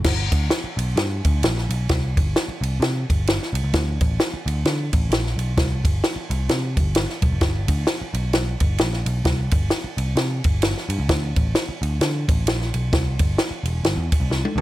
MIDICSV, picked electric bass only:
0, 0, Header, 1, 3, 480
1, 0, Start_track
1, 0, Key_signature, 0, "major"
1, 0, Tempo, 459770
1, 61, Time_signature, 4, 2, 24, 8
1, 15255, End_track
2, 0, Start_track
2, 0, Title_t, "Picked electric bass"
2, 0, Program_c, 0, 34
2, 45, Note_on_c, 0, 31, 101
2, 297, Note_off_c, 0, 31, 0
2, 331, Note_on_c, 0, 38, 92
2, 509, Note_off_c, 0, 38, 0
2, 805, Note_on_c, 0, 35, 99
2, 985, Note_off_c, 0, 35, 0
2, 1002, Note_on_c, 0, 43, 96
2, 1256, Note_off_c, 0, 43, 0
2, 1304, Note_on_c, 0, 38, 100
2, 1476, Note_off_c, 0, 38, 0
2, 1491, Note_on_c, 0, 34, 87
2, 1741, Note_off_c, 0, 34, 0
2, 1771, Note_on_c, 0, 35, 99
2, 1949, Note_off_c, 0, 35, 0
2, 1983, Note_on_c, 0, 36, 102
2, 2260, Note_on_c, 0, 31, 92
2, 2276, Note_off_c, 0, 36, 0
2, 2434, Note_off_c, 0, 31, 0
2, 2727, Note_on_c, 0, 36, 103
2, 2907, Note_off_c, 0, 36, 0
2, 2922, Note_on_c, 0, 48, 104
2, 3176, Note_off_c, 0, 48, 0
2, 3232, Note_on_c, 0, 31, 85
2, 3524, Note_off_c, 0, 31, 0
2, 3684, Note_on_c, 0, 36, 96
2, 3779, Note_off_c, 0, 36, 0
2, 3794, Note_on_c, 0, 37, 102
2, 3884, Note_off_c, 0, 37, 0
2, 3900, Note_on_c, 0, 38, 105
2, 4146, Note_off_c, 0, 38, 0
2, 4185, Note_on_c, 0, 33, 89
2, 4357, Note_off_c, 0, 33, 0
2, 4657, Note_on_c, 0, 38, 109
2, 4833, Note_off_c, 0, 38, 0
2, 4856, Note_on_c, 0, 50, 96
2, 5104, Note_off_c, 0, 50, 0
2, 5146, Note_on_c, 0, 33, 91
2, 5318, Note_off_c, 0, 33, 0
2, 5323, Note_on_c, 0, 34, 103
2, 5576, Note_off_c, 0, 34, 0
2, 5603, Note_on_c, 0, 35, 86
2, 5784, Note_off_c, 0, 35, 0
2, 5816, Note_on_c, 0, 36, 122
2, 6063, Note_off_c, 0, 36, 0
2, 6096, Note_on_c, 0, 31, 100
2, 6271, Note_off_c, 0, 31, 0
2, 6580, Note_on_c, 0, 36, 100
2, 6754, Note_off_c, 0, 36, 0
2, 6775, Note_on_c, 0, 48, 96
2, 7066, Note_on_c, 0, 31, 86
2, 7082, Note_off_c, 0, 48, 0
2, 7360, Note_off_c, 0, 31, 0
2, 7538, Note_on_c, 0, 35, 85
2, 7626, Note_off_c, 0, 35, 0
2, 7644, Note_on_c, 0, 30, 96
2, 7726, Note_off_c, 0, 30, 0
2, 7732, Note_on_c, 0, 31, 103
2, 7981, Note_off_c, 0, 31, 0
2, 8019, Note_on_c, 0, 38, 90
2, 8193, Note_off_c, 0, 38, 0
2, 8495, Note_on_c, 0, 35, 88
2, 8915, Note_off_c, 0, 35, 0
2, 8987, Note_on_c, 0, 31, 92
2, 9157, Note_off_c, 0, 31, 0
2, 9183, Note_on_c, 0, 34, 86
2, 9427, Note_off_c, 0, 34, 0
2, 9457, Note_on_c, 0, 35, 96
2, 9632, Note_off_c, 0, 35, 0
2, 9651, Note_on_c, 0, 36, 103
2, 9900, Note_off_c, 0, 36, 0
2, 9942, Note_on_c, 0, 31, 106
2, 10114, Note_off_c, 0, 31, 0
2, 10412, Note_on_c, 0, 36, 103
2, 10589, Note_off_c, 0, 36, 0
2, 10604, Note_on_c, 0, 48, 114
2, 10856, Note_off_c, 0, 48, 0
2, 10905, Note_on_c, 0, 31, 99
2, 11198, Note_off_c, 0, 31, 0
2, 11367, Note_on_c, 0, 43, 96
2, 11459, Note_off_c, 0, 43, 0
2, 11469, Note_on_c, 0, 37, 103
2, 11560, Note_off_c, 0, 37, 0
2, 11574, Note_on_c, 0, 38, 104
2, 11821, Note_off_c, 0, 38, 0
2, 11862, Note_on_c, 0, 33, 92
2, 12034, Note_off_c, 0, 33, 0
2, 12337, Note_on_c, 0, 38, 100
2, 12511, Note_off_c, 0, 38, 0
2, 12538, Note_on_c, 0, 50, 100
2, 12783, Note_off_c, 0, 50, 0
2, 12822, Note_on_c, 0, 33, 98
2, 12994, Note_off_c, 0, 33, 0
2, 13013, Note_on_c, 0, 34, 85
2, 13261, Note_off_c, 0, 34, 0
2, 13305, Note_on_c, 0, 35, 90
2, 13475, Note_off_c, 0, 35, 0
2, 13494, Note_on_c, 0, 36, 113
2, 13741, Note_off_c, 0, 36, 0
2, 13774, Note_on_c, 0, 31, 89
2, 13949, Note_off_c, 0, 31, 0
2, 14235, Note_on_c, 0, 28, 103
2, 14418, Note_off_c, 0, 28, 0
2, 14444, Note_on_c, 0, 31, 84
2, 14573, Note_off_c, 0, 31, 0
2, 14579, Note_on_c, 0, 40, 86
2, 14710, Note_off_c, 0, 40, 0
2, 14826, Note_on_c, 0, 36, 84
2, 14918, Note_off_c, 0, 36, 0
2, 14932, Note_on_c, 0, 36, 90
2, 15057, Note_off_c, 0, 36, 0
2, 15198, Note_on_c, 0, 38, 99
2, 15255, Note_off_c, 0, 38, 0
2, 15255, End_track
3, 0, Start_track
3, 0, Title_t, "Muted picked electric bass strokes"
3, 668, Note_on_c, 9, 29, 44
3, 772, Note_off_c, 9, 29, 0
3, 2593, Note_on_c, 9, 29, 46
3, 2698, Note_off_c, 9, 29, 0
3, 4527, Note_on_c, 9, 29, 53
3, 4632, Note_off_c, 9, 29, 0
3, 6431, Note_on_c, 9, 29, 49
3, 6535, Note_off_c, 9, 29, 0
3, 8367, Note_on_c, 9, 29, 42
3, 8472, Note_off_c, 9, 29, 0
3, 10275, Note_on_c, 9, 29, 53
3, 10380, Note_off_c, 9, 29, 0
3, 12201, Note_on_c, 9, 29, 49
3, 12305, Note_off_c, 9, 29, 0
3, 14102, Note_on_c, 9, 29, 45
3, 14207, Note_off_c, 9, 29, 0
3, 15255, End_track
0, 0, End_of_file